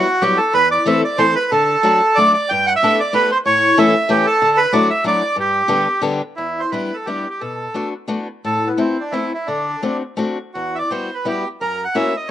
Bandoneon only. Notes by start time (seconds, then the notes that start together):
Already playing: F#4
0.21 G4
0.37 A4
0.54 B4
0.71 D5
0.87 E5
1.04 D5
1.18 C5
1.35 B4
1.51 A4
2.15 D5
2.34 D5
2.49 G5
2.66 F#5 G5
2.76 E5
3.00 D5
3.14 B4
3.32 C5
3.46 C#5
3.79 E5
4.10 G4
4.26 A4
4.57 B4
4.73 D5
4.90 E5
5.07 D5
5.40 G4
6.36 E4
6.59 C5
6.71 B4
6.94 A4
7.06 G4
7.30 G4
7.40 A4
8.45 A4
8.67 B3
8.79 C4
9.00 D4
9.11 E4
9.34 E4
9.46 D4
10.54 F#4
10.75 D5 E5
10.91 C5
11.14 B4
11.28 G4
11.61 A#4
11.84 F#5
11.95 E5
12.16 D#5